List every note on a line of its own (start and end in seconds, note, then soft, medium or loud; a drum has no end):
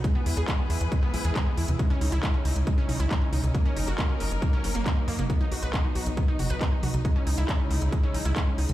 0.04 1.78 E3 medium
0.04 0.07 G#3 medium
0.04 3.51 E4 medium
0.04 1.78 G#4 medium
0.04 1.78 B4 medium
0.04 kick loud
0.04 closed hi-hat medium
0.15 0.22 B3 loud
0.26 0.33 E2 medium
0.26 0.31 E4 medium
0.26 open hi-hat loud
0.37 0.44 E2 medium
0.37 0.42 G#4 loud
0.37 closed hi-hat medium
0.48 0.53 G#3 medium
0.48 kick loud
0.48 clap loud
0.48 closed hi-hat medium
0.59 0.66 B3 medium
0.70 0.77 E2 loud
0.70 0.75 E4 medium
0.70 open hi-hat medium
0.81 0.88 E2 medium
0.81 closed hi-hat medium
0.92 0.95 G#3 medium
0.92 kick loud
0.92 closed hi-hat medium
1.03 1.10 B3 loud
1.14 1.21 B1 loud
1.14 1.18 E4 medium
1.14 open hi-hat loud
1.25 1.32 E2 medium
1.25 1.29 G#4 loud
1.25 closed hi-hat medium
1.35 1.40 G#3 medium
1.35 kick loud
1.35 clap loud
1.35 closed hi-hat medium
1.46 1.54 B3 medium
1.57 1.65 E2 medium
1.57 1.62 E4 medium
1.57 open hi-hat loud
1.68 1.76 E2 medium
1.68 closed hi-hat medium
1.68 mid tom medium
1.79 3.53 C#3 medium
1.79 1.82 G#3 medium
1.79 5.26 C#4 medium
1.79 8.73 D#4 medium
1.79 kick loud
1.79 closed hi-hat medium
1.90 1.98 C#4 loud
2.01 2.08 C#2 loud
2.01 2.06 D#4 medium
2.01 open hi-hat loud
2.12 2.19 C#2 medium
2.12 2.17 E4 loud
2.12 closed hi-hat medium
2.23 2.28 G#3 medium
2.23 kick loud
2.23 clap loud
2.23 closed hi-hat medium
2.34 2.41 C#4 medium
2.45 2.52 C#2 loud
2.45 2.50 D#4 medium
2.45 open hi-hat loud
2.56 2.63 C#2 medium
2.56 closed hi-hat medium
2.67 2.70 G#3 medium
2.67 kick loud
2.67 closed hi-hat medium
2.78 2.85 C#4 loud
2.89 2.96 B1 loud
2.89 2.94 D#4 medium
2.89 open hi-hat loud
2.89 mid tom medium
3.00 3.07 C#2 medium
3.00 3.05 E4 loud
3.00 closed hi-hat medium
3.11 3.16 G#3 medium
3.11 kick loud
3.11 clap loud
3.11 closed hi-hat medium
3.22 3.29 C#4 medium
3.33 3.40 C#2 medium
3.33 3.37 D#4 medium
3.33 open hi-hat loud
3.33 mid tom medium
3.43 3.51 C#2 medium
3.43 closed hi-hat medium
3.43 mid tom medium
3.54 7.01 F#3 medium
3.54 3.57 A#3 medium
3.54 5.28 A#4 medium
3.54 kick loud
3.54 closed hi-hat medium
3.65 3.73 C#4 loud
3.76 3.84 F#1 medium
3.76 3.81 D#4 medium
3.76 open hi-hat loud
3.87 3.95 F#1 medium
3.87 3.92 F#4 loud
3.87 closed hi-hat medium
3.98 4.03 A#3 medium
3.98 kick loud
3.98 clap loud
3.98 closed hi-hat medium
4.09 4.17 C#4 medium
4.20 4.27 F#1 loud
4.20 4.25 D#4 medium
4.20 open hi-hat loud
4.31 4.38 F#1 medium
4.31 closed hi-hat medium
4.42 4.45 A#3 medium
4.42 kick loud
4.42 closed hi-hat medium
4.53 4.60 C#4 loud
4.64 4.71 F#1 loud
4.64 4.69 C#4 medium
4.64 open hi-hat loud
4.75 4.82 F#1 medium
4.75 4.82 A#3 loud
4.75 closed hi-hat medium
4.86 4.89 A#3 loud
4.86 kick loud
4.86 clap loud
4.86 closed hi-hat medium
4.97 5.04 A#3 medium
5.08 5.15 F#2 medium
5.08 5.13 A#3 loud
5.08 open hi-hat medium
5.19 5.26 F#1 medium
5.19 5.24 A#3 loud
5.19 closed hi-hat medium
5.19 mid tom medium
5.30 5.33 B3 medium
5.30 7.03 B3 medium
5.30 kick loud
5.30 closed hi-hat medium
5.41 5.48 D#4 loud
5.52 5.59 B1 loud
5.52 5.56 F#4 medium
5.52 open hi-hat loud
5.62 5.70 B1 medium
5.62 5.67 B4 loud
5.62 closed hi-hat medium
5.73 5.78 B3 medium
5.73 kick loud
5.73 clap loud
5.73 closed hi-hat medium
5.84 5.92 D#4 medium
5.95 6.03 B1 medium
5.95 6.00 F#4 medium
5.95 open hi-hat medium
6.06 6.14 B1 medium
6.06 closed hi-hat medium
6.17 6.20 B3 medium
6.17 kick loud
6.17 closed hi-hat medium
6.28 6.36 D#4 loud
6.39 6.46 F#1 medium
6.39 6.44 F#4 medium
6.39 open hi-hat loud
6.39 mid tom medium
6.50 6.57 B1 medium
6.50 6.55 B4 loud
6.50 closed hi-hat medium
6.61 6.66 B3 medium
6.61 kick loud
6.61 clap loud
6.61 closed hi-hat medium
6.72 6.79 D#4 medium
6.83 6.90 B1 medium
6.83 6.88 F#4 medium
6.83 open hi-hat loud
6.83 mid tom medium
6.94 7.01 B1 medium
6.94 closed hi-hat medium
6.94 mid tom medium
7.05 8.73 C#3 medium
7.05 7.08 G#3 medium
7.05 8.73 G#3 medium
7.05 8.73 E4 medium
7.05 kick loud
7.05 closed hi-hat medium
7.16 7.23 C#4 loud
7.27 7.34 C#2 medium
7.27 7.32 D#4 medium
7.27 open hi-hat loud
7.38 7.45 C#2 medium
7.38 7.43 E4 loud
7.38 closed hi-hat medium
7.49 7.54 G#3 medium
7.49 kick loud
7.49 clap loud
7.49 closed hi-hat medium
7.60 7.67 C#4 medium
7.70 7.78 C#2 loud
7.70 7.75 D#4 medium
7.70 open hi-hat medium
7.82 7.89 C#2 medium
7.82 closed hi-hat medium
7.92 7.95 G#3 medium
7.92 kick loud
7.92 closed hi-hat medium
8.03 8.11 C#4 loud
8.14 8.22 B1 medium
8.14 8.19 D#4 medium
8.14 open hi-hat loud
8.25 8.33 C#2 medium
8.25 8.30 E4 loud
8.25 closed hi-hat medium
8.36 8.41 G#3 medium
8.36 kick loud
8.36 clap loud
8.36 closed hi-hat medium
8.47 8.55 C#4 medium
8.58 8.65 C#2 medium
8.58 8.63 D#4 medium
8.58 open hi-hat medium
8.69 8.73 C#2 medium
8.69 closed hi-hat medium
8.69 mid tom medium